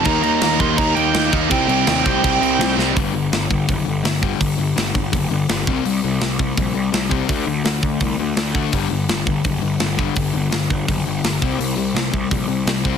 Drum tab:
CC |xxxxxxxx|xxxxxxx-|--------|--------|
HH |--------|--------|o-o-o-o-|o-o-o-o-|
SD |--o---o-|--o---oo|--o---o-|--o---o-|
BD |o--oo--o|o--oo---|o--oo--o|o--oo--o|

CC |--------|--------|--------|--------|
HH |o-o-o-o-|o-o-o-o-|o-o-o-o-|o-o-o-o-|
SD |--o---o-|--o---o-|--o---o-|--o---o-|
BD |---oo--o|o--oo--o|o--oo--o|o--oo--o|

CC |--------|
HH |o-o-o-o-|
SD |--o---o-|
BD |---oo--o|